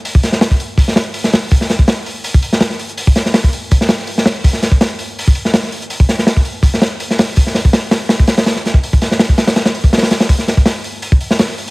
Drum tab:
HH |o---o---o---o---o---o---o---o---|o---o---o---o---o---o---o---o-x-|o---o---o---o---o---o---o---o---|o---o---o---o---o---o---o---o-x-|
SD |----o-o-o---------o-o-----o-o---|--o-o---o-------------o-o-o-----|----o-o-o---------o-o-o---o-o---|--o-o---o-------------o-o-o-----|
BD |--o-------o-----o---------------|o-----o-----------o-------------|--o-------o-----o---------------|o-----o-----------o-------------|

HH |o---o---o---o---o---o---o---o---|o---o---o---o---o---o-o-o---o---|o---o---o---o-o-o-o-o---ooo-o-o-|o---o---o---o---o---o---o---o---|
SD |----o-o-o---------o-o-----o-o---|--o-o---o---o---o---o-o-o-o-o---|----o-o-o---o-o-o-o-----ooo-o-o-|--o-o---o-------------o-o-o-----|
BD |--o-------o-----o---------------|o-----o-----------o-----------o-|--o-------o-----------o---------|o-----o-----------o-------------|